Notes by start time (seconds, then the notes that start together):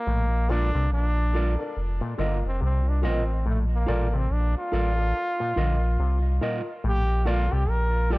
Already playing: A#3
0.07 A#1 A2
0.49 A#2 D4 F4 A4 A#4 D5
0.75 C2 C3
0.91 A#1 D4
1.33 F4 A4 A#4 D5
1.59 A4 A#4 D5
1.77 F1
2.01 A#2 A#4 D#5
2.18 G1 D3 A#3 F4 A#4 D#5
2.45 F1 C4
2.61 C2 C3 C4
2.86 D4 A#4 D#5
3.02 A1 A#2 F4 A#4 D#5
3.06 C4
3.45 A#1 A2 A3
3.74 A#3
3.86 A1 A#2 F4 A4 A#4 D5
4.14 C3 C4
4.30 A#1 D4
4.58 F4
4.72 A1 F4 A4 A#4 D5
4.97 A4 A#4 D5
5.40 A#2 A#4 D#5
5.56 A#1 D3 F4 A#4 D#5
5.99 C2 C3
6.41 A#2 F4 A#4 D#5
6.84 A#1 A2 G4
7.25 A#2 F4 A4 A#4 D5
7.52 C2 C3 G4
7.68 A#1 A#4
8.10 F4 G4 A4 A#4 D5